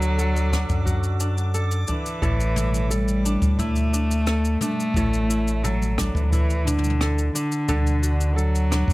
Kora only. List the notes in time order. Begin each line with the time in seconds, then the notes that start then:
Already playing: D3 D4 F#4 A4
0.18 A4
0.52 D4
0.85 F#4
1.20 D4
1.54 A4
1.88 D4
2.22 A2 A4
2.57 E4
2.90 A4
3.25 D4
3.59 E4
3.93 D4
4.27 A4
4.62 D4
4.96 A2 A4
5.30 E4
5.64 A4
5.98 D4
6.33 E4
6.66 D4
7.01 A4
7.35 D4
7.68 D3 A4
8.02 F#4
8.36 A4
8.70 D4